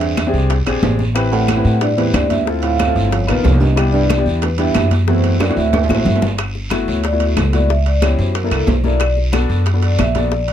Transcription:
Already playing: E2 G2 C4 D4 G4 G#4 E5
0.01 high bongo, high conga, high timbale
0.17 high bongo, high conga, high timbale, low timbale, short guiro, claves
0.27 C4 D4 G4 G#4
0.34 C2, high conga, short guiro
0.50 high bongo, high conga, high timbale, long guiro
0.66 A#1 C4 D4 G4 G#4, high bongo, high conga, high timbale, claves
0.83 A1, high bongo, low bongo, high conga, low timbale, short guiro
0.99 high bongo, high conga, short guiro
1.15 C4 E4 G4 B4, high bongo, high conga, high timbale, long guiro, claves
1.32 A2 F#5, high bongo, high conga
1.48 high bongo, high conga, high timbale, low timbale, short guiro, claves
1.56 C4 E4 G4 B4
1.64 A2, high conga, short guiro
1.81 G2 D5, high bongo, high conga, high timbale, long guiro
1.97 E2 C4 E4 G4 B4 C5, high bongo, high conga, high timbale
2.13 D2 G2 D5, high bongo, low bongo, high conga, high timbale, low timbale, short guiro, claves
2.29 G2 E5, high bongo, high conga, high timbale, short guiro
2.45 C4 E4 F4 A4, high bongo, high conga, long guiro
2.62 A2 F5, high bongo, high conga, high timbale
2.79 high bongo, high conga, high timbale, low timbale, short guiro, claves
2.86 C4 E4 F4 A4
2.95 G1, high conga, short guiro
3.11 F2 C#5, high bongo, high conga, high timbale, long guiro
3.27 A#1 D#2 B3 D#4 F4 A#4 B4, high bongo, high conga, high timbale, claves
3.43 C2 F2 C#5, high bongo, low bongo, high conga, low timbale, short guiro
3.59 G2 D#5, high bongo, high conga, short guiro
3.76 B3 D4 E4 G4, high bongo, high timbale, long guiro, claves
3.92 G2 D5, high bongo, high conga
4.10 high bongo, high conga, high timbale, low timbale, short guiro, claves
4.18 B3 D4 E4 G4
4.26 E2, high conga, short guiro
4.41 D2 B4, high bongo, high conga, high timbale, long guiro
4.57 G2 B3 D4 E4 G4 E5, high bongo, high conga, high timbale
4.75 F#2, high bongo, low bongo, high conga, high timbale, low timbale, short guiro, claves
4.91 high bongo, high conga, high timbale, short guiro
5.07 E2 A3 C4 E4 F#4 C5, high bongo, high conga, long guiro
5.24 high bongo, high conga, high timbale
5.39 F#2 D5, high bongo, high conga, high timbale, short guiro, claves
5.48 A3 C4 E4 F#4, high timbale
5.57 D2 A2 E5, high conga, short guiro
5.73 high bongo, high conga, high timbale, long guiro
5.84 low timbale
5.89 A1 A3 C4 E4 F#4, high bongo, high conga, claves
5.95 low timbale
6.05 G1, low bongo, low conga, short guiro
6.16 low timbale
6.22 low bongo, low conga, short guiro
6.27 low timbale
6.38 high bongo, high timbale, long guiro, claves
6.55 high bongo, high conga
6.70 A3 B3 E4 F#4, high bongo, high conga, high timbale, low timbale, short guiro, claves
6.88 D2 C#5, high conga, short guiro
7.04 D5, high bongo, high conga, high timbale, long guiro
7.12 A3 B3 E4 F#4
7.20 F#4, high bongo, high conga, high timbale
7.37 C#2 A4, high bongo, low bongo, high conga, high timbale, low timbale, short guiro, claves
7.53 A3 B3 E4 F#4 D5, high bongo, high conga, high timbale, short guiro
7.70 E5, high bongo, high conga, long guiro
7.86 D5, high bongo, high conga, high timbale
8.02 B3 C#4 E4 G4 C#5, high bongo, high conga, high timbale, low timbale, short guiro, claves
8.18 F#2 C5, high conga, short guiro
8.35 A#4, high bongo, high conga, high timbale, long guiro
8.43 A#3 D4 E4 A4
8.51 C2 A4, high bongo, high conga, high timbale, claves
8.67 B1 C5, high bongo, low bongo, high conga, low timbale, short guiro
8.84 A#3 D4 E4 A4 D5, high bongo, high conga, short guiro
9.00 high bongo, high conga, high timbale, long guiro, claves
9.17 high bongo, high conga
9.32 B3 D4 F#4 A4, high bongo, high conga, high timbale, low timbale, short guiro, claves
9.49 F#2, high conga, short guiro
9.66 high bongo, high conga, high timbale, long guiro
9.74 B3 D4 F#4 A4
9.82 D5, high bongo, high conga, high timbale
9.99 A#1 E5, high bongo, low bongo, high conga, high timbale, low timbale, short guiro, claves
10.15 B3 D4 F#4 A4 D5, high bongo, high conga, high timbale, short guiro
10.32 high bongo, high conga, long guiro
10.48 high bongo, high conga, high timbale

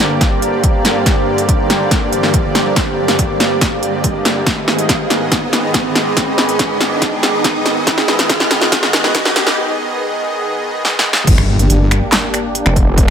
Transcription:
Already playing: G2 D3 A#3 G4 C5 D5 F5 A#5, riser
0.21 kick, snare, closed hi-hat
0.42 closed hi-hat
0.64 kick, closed hi-hat
0.85 snare, closed hi-hat
1.06 kick, snare, closed hi-hat
1.38 closed hi-hat
1.49 kick, closed hi-hat
1.70 snare, closed hi-hat
1.91 kick, snare, closed hi-hat
2.12 closed hi-hat
2.23 snare
2.34 kick, closed hi-hat
2.55 snare, closed hi-hat
2.76 kick, snare, closed hi-hat
3.08 snare, closed hi-hat
3.19 kick, closed hi-hat
3.40 snare, closed hi-hat
3.61 kick, snare, closed hi-hat
3.83 closed hi-hat
4.04 kick, closed hi-hat
4.25 snare, closed hi-hat
4.46 G#2 D#3 B3 G#4 D#5, kick, snare, closed hi-hat
4.62 G5 D6
4.68 snare
4.79 closed hi-hat
4.89 kick, snare, closed hi-hat
5.02 B5
5.10 snare, closed hi-hat
5.32 kick, snare, closed hi-hat
5.53 snare, closed hi-hat
5.74 kick, snare, closed hi-hat
5.95 snare, closed hi-hat
6.17 kick, snare, closed hi-hat
6.38 snare
6.49 closed hi-hat
6.59 kick, snare, closed hi-hat
6.81 snare, closed hi-hat
7.02 kick, snare, closed hi-hat
7.23 snare, closed hi-hat
7.44 kick, snare, closed hi-hat
7.66 snare, closed hi-hat
7.87 kick, snare, closed hi-hat
7.98 snare
8.08 snare
8.19 snare, closed hi-hat
8.29 kick, snare, closed hi-hat
8.40 snare
8.51 snare, closed hi-hat
8.61 snare
8.72 kick, snare, closed hi-hat
8.83 snare
8.93 snare, closed hi-hat
9.04 snare
9.15 kick, snare, closed hi-hat
9.25 snare
9.36 snare, closed hi-hat
9.47 snare
10.85 snare
10.99 snare
11.13 snare
11.27 G1 A#3 D4 G4, kick, closed hi-hat, crash, impact
11.38 finger snap
11.59 closed hi-hat
11.70 G1, closed hi-hat
11.91 finger snap, closed hi-hat
12.12 snare, clap, closed hi-hat
12.34 finger snap, closed hi-hat
12.55 closed hi-hat
12.66 F1, finger snap
12.76 kick, closed hi-hat
12.98 kick, closed hi-hat

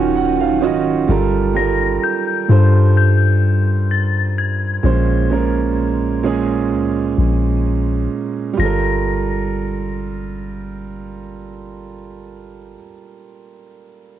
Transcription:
Already playing: D#1 D#3 F#3 C#4 D#4 F4 F#4 G#5
0.15 F#5
0.41 F5
0.61 C#1 D#3 C#4 F4 F#4 D#5
1.08 G1 G3 F4 A4 A#4
1.55 G3 F4 A4 A#4 A#6
2.04 G6
2.48 G2 G3 F4 A4 C5
2.97 G6
3.91 A6
4.38 G#6
4.83 A#1 A#2 G#3 C#4 C5
5.30 A#2 G#3 C#4 A#4
6.23 A#2 G#3 C#4 G#4
6.71 C#2
7.18 A#1
8.53 G3 F4
8.59 G1 A4 A#6
8.65 A#4

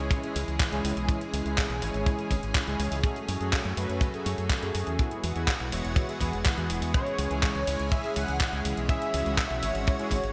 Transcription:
Already playing: E3 G#3 C#4 E4 G#4 C#5
0.11 kick, closed hi-hat
0.24 G#3 C#4 E4 G#4, closed hi-hat
0.36 C#2, open hi-hat
0.48 C#2, closed hi-hat
0.60 kick, clap, closed hi-hat
0.72 C#2 G#3 C#4 E4 G#4, closed hi-hat
0.84 C#2, open hi-hat
0.97 B1, closed hi-hat
1.09 G#3 C#4 E4 G#4, kick, closed hi-hat
1.21 closed hi-hat
1.33 C#2, open hi-hat
1.45 C#2 G#3 C#4 E4 G#4, closed hi-hat
1.58 kick, clap, closed hi-hat
1.70 B1, closed hi-hat
1.82 G#1 G#3 C#4 E4 C#5, open hi-hat
1.94 G#1, closed hi-hat
2.06 kick, closed hi-hat
2.19 G#3 C#4 E4 G#4, closed hi-hat
2.31 G#1, kick, open hi-hat
2.43 G#1, closed hi-hat
2.55 kick, clap, closed hi-hat
2.67 C#2 G#3 C#4 E4 G#4, closed hi-hat
2.79 C#2, open hi-hat
2.92 C#2, open hi-hat
3.04 F#3 A3 C#4 F#4 G#4, kick, closed hi-hat
3.16 closed hi-hat
3.28 F#2, open hi-hat
3.40 F#2 A3 C#4 F#4 G#4, closed hi-hat
3.53 kick, clap, closed hi-hat
3.65 F#2, closed hi-hat
3.77 F#2 A3 C#4 F#4 B4, open hi-hat
3.89 F#2, closed hi-hat
4.01 kick, closed hi-hat
4.14 A3 C#4 F#4 G#4, closed hi-hat
4.26 F#2, open hi-hat
4.38 F#2, closed hi-hat
4.50 kick, clap, closed hi-hat
4.62 F#2 A3 C#4 F#4 G#4, closed hi-hat
4.75 F#2, open hi-hat
4.87 E2, closed hi-hat
4.99 E3 G#3 B3 E4 F#4 G#4, kick, closed hi-hat
5.11 closed hi-hat
5.24 E2, open hi-hat
5.36 E2 B3 E4 F#4 G#4, closed hi-hat
5.47 kick, clap, closed hi-hat
5.60 B1, closed hi-hat
5.72 E1 B3 E4 F#4 C#5, open hi-hat
5.85 E1, closed hi-hat
5.96 kick, closed hi-hat
6.09 B3 E4 F#4 G#4, closed hi-hat
6.21 E2 B3 E4 F#4 G#4, kick, open hi-hat
6.33 E1, closed hi-hat
6.45 kick, clap, closed hi-hat
6.57 E2 B3 E4 F#4 G#4, closed hi-hat
6.70 E1, open hi-hat
6.82 E2, open hi-hat
6.94 G#3 C#4 E4 G#4 C#5, kick, closed hi-hat
7.06 closed hi-hat
7.18 C#2, open hi-hat
7.31 C#2 G#3 C#4 E4 G#4, closed hi-hat
7.43 C#5, kick, clap, closed hi-hat
7.55 C#2, closed hi-hat
7.67 C#2 G#3 C#4 E4 C#5, open hi-hat
7.80 C#2, closed hi-hat
7.92 E5, kick, closed hi-hat
8.04 G#3 C#4 E4 G#4, closed hi-hat
8.16 C#2 F#5, open hi-hat
8.28 C#2, closed hi-hat
8.40 kick, clap, closed hi-hat
8.53 C#2 G#3 C#4 E4 G#4, closed hi-hat
8.65 C#2, open hi-hat
8.77 B1, closed hi-hat
8.89 G#3 C#4 E4 F#4 G#4 E5, kick, closed hi-hat
9.02 closed hi-hat
9.14 C#2, open hi-hat
9.26 C#2 G#3 C#4 E4 G#4, closed hi-hat
9.38 E5, kick, clap, closed hi-hat
9.50 B1, closed hi-hat
9.63 G#1 G#3 C#4 E4 C#5, open hi-hat
9.75 G#1, closed hi-hat
9.87 C#5, kick, closed hi-hat
9.99 G#3 C#4 E4 G#4, closed hi-hat
10.11 G#1, kick, open hi-hat
10.23 G#1, closed hi-hat

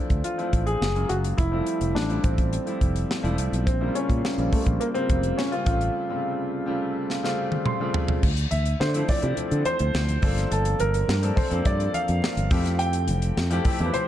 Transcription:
Already playing: E3 F3 A3 C4 D4 E4
0.10 D2, kick, closed hi-hat
0.24 F4, closed hi-hat
0.38 F3 A3 C4 D4 E4, closed hi-hat
0.53 A1, kick, closed hi-hat
0.67 G#4, closed hi-hat
0.81 F#1, snare
0.95 F#3 G#3 A#3 C#4 F4, closed hi-hat
1.09 F#1 F#4, closed hi-hat
1.24 closed hi-hat
1.38 F1 E4, kick, closed hi-hat
1.52 F3 G3 A3 C4 E4
1.66 closed hi-hat
1.81 F1, closed hi-hat
1.95 A1 D4, snare
2.09 F3 G3 A3 C4 E4, closed hi-hat
2.23 A1 C4, kick, closed hi-hat
2.38 kick, closed hi-hat
2.53 closed hi-hat
2.66 F3 G3 A3 C4 E4, closed hi-hat
2.81 F1, kick, closed hi-hat
2.96 closed hi-hat
3.11 snare
3.23 E1 F3 G3 A3 C4 E4, closed hi-hat
3.38 C2, closed hi-hat
3.53 B1, closed hi-hat
3.66 A#1 C4, kick, closed hi-hat
3.80 C#3 G3 A#3 E4 C5
3.88 F4
3.95 C#4, closed hi-hat
4.10 A#2, kick, closed hi-hat
4.25 snare
4.37 A#1 C#3 G3 A#3 C4 F4, closed hi-hat
4.52 A3, kick, open hi-hat
4.66 A#1, kick, closed hi-hat
4.80 A#3, closed hi-hat
4.94 C#3 G3 A#3 C4 F4, closed hi-hat
5.09 F1, kick, closed hi-hat
5.23 closed hi-hat
5.37 C#4, snare
5.52 C#3 G3 A#3 C4 F4, closed hi-hat
5.66 A1 C#3 G3 A3 C4 F4, kick, closed hi-hat
5.81 closed hi-hat
6.09 C3 G3 A3 C4 F4
6.15 C#3
6.66 C#3 G3 A3 C4 F4
7.10 snare
7.23 C#3 G3 A3 C4 F4, snare
7.52 high tom
7.66 C6, mid tom
7.80 C#3 G3 A3 C4 F4
7.94 floor tom
8.08 floor tom
8.23 D2, kick, crash
8.37 closed hi-hat
8.51 D2 E5, closed hi-hat, muted conga, high conga
8.66 closed hi-hat
8.80 D3 C5, snare
8.94 F3 A3 C4 D4 E4, closed hi-hat
9.08 F3 A3 D4 E4 D5, kick, snare, open hi-hat, muted conga, high conga, low conga
9.22 C3 F3 A3 C4 D4 E4, closed hi-hat
9.37 muted fretless electric bass stroke, closed hi-hat, muted conga, low conga
9.51 D3, closed hi-hat
9.65 C5, closed hi-hat, high conga
9.79 D2, closed hi-hat
9.94 D2, snare, muted conga, high conga
10.08 closed hi-hat, high conga
10.22 G1 F3 A#3 C4 D4 A4, kick, open hi-hat, muted conga, low conga
10.38 snare, closed hi-hat
10.51 G1 A4, closed hi-hat, muted conga
10.65 closed hi-hat
10.79 G1 A#4, closed hi-hat, muted conga, high conga
10.94 closed hi-hat
11.08 G2, snare
11.22 F3 A#3 C4 D4 A4, closed hi-hat
11.36 F3 A#3 C4 D4 A4 C5, kick, open hi-hat, muted conga, high conga, low conga
11.50 F2 F3 A#3 C4 D4 A4, closed hi-hat
11.65 G2 D5, kick, closed hi-hat, low conga
11.80 closed hi-hat
11.94 F5, closed hi-hat, high conga
12.08 F2, closed hi-hat
12.22 snare, muted conga, high conga
12.37 G1, closed hi-hat, high conga
12.51 F2 F3 A3 C4 E4 G4, kick, open hi-hat, muted conga, low conga
12.66 snare, closed hi-hat
12.79 G5, closed hi-hat
12.93 closed hi-hat
13.08 F1, closed hi-hat, muted conga, high conga
13.22 closed hi-hat
13.37 F2, snare
13.50 F3 A3 C4 E4 G4, closed hi-hat
13.64 F3 A3 C4 E4 G4, kick, open hi-hat, muted conga, high conga, low conga
13.79 E2 F3 A3 C4 E4 G4, closed hi-hat
13.86 B4
13.94 C5, muted fretless electric bass stroke, closed hi-hat, muted conga, low conga

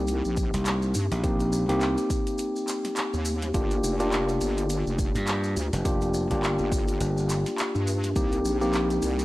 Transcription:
Already playing: C2 A#3 C4 D#4 G4
0.07 closed hi-hat, maracas
0.25 A#1, maracas
0.37 kick, closed hi-hat, maracas
0.54 C2, snare, closed hi-hat, maracas
0.65 clap, closed hi-hat, maracas
0.82 maracas
0.94 G2, open hi-hat, maracas
1.11 A#1, snare, closed hi-hat, maracas
1.23 A#3 C4 D#4 G4, kick, closed hi-hat, maracas
1.40 closed hi-hat, maracas
1.52 maracas
1.69 C2 A#3 C4 D#4 G4, snare, closed hi-hat, maracas
1.81 clap, maracas
1.98 closed hi-hat, maracas
2.10 kick, open hi-hat, maracas
2.27 closed hi-hat, maracas
2.38 closed hi-hat, maracas
2.56 maracas
2.68 clap, closed hi-hat, maracas
2.85 snare, closed hi-hat, maracas
2.96 clap, closed hi-hat, maracas
3.13 D#2, maracas
3.25 open hi-hat, maracas
3.42 snare, closed hi-hat, maracas
3.54 G1 A#3 D4 F4 G4, kick, closed hi-hat, maracas
3.71 closed hi-hat, maracas
3.83 F1, maracas
4.00 A#3 D4 F4 G4, closed hi-hat, maracas
4.12 clap, maracas
4.29 closed hi-hat, maracas
4.41 G1, open hi-hat, maracas
4.57 closed hi-hat, maracas
4.70 closed hi-hat, maracas
4.86 F1, maracas
4.99 kick, closed hi-hat, maracas
5.15 G2, snare, closed hi-hat, maracas
5.27 clap, closed hi-hat, maracas
5.44 maracas
5.56 D2, open hi-hat, maracas
5.73 F1, snare, closed hi-hat, maracas
5.85 A#3 D4 F4 G4, kick, closed hi-hat, maracas
6.01 closed hi-hat, maracas
6.14 maracas
6.31 G1 A#3 D4 F4 G4, kick, snare, closed hi-hat, maracas
6.43 clap, maracas
6.58 G1, maracas
6.72 kick, open hi-hat, maracas
6.88 closed hi-hat, maracas
7.00 G1, closed hi-hat, maracas
7.18 maracas
7.29 clap, closed hi-hat, maracas
7.46 snare, closed hi-hat, maracas
7.58 clap, closed hi-hat, maracas
7.75 G2, maracas
7.87 open hi-hat, maracas
8.04 snare, closed hi-hat, maracas
8.16 C2 A#3 C4 D#4 G4, kick, closed hi-hat, maracas
8.32 closed hi-hat, maracas
8.45 A#1, maracas
8.61 A#3 C4 D#4 G4, maracas
8.73 clap, maracas
8.90 closed hi-hat, maracas
9.02 C2, open hi-hat, maracas
9.19 closed hi-hat, maracas

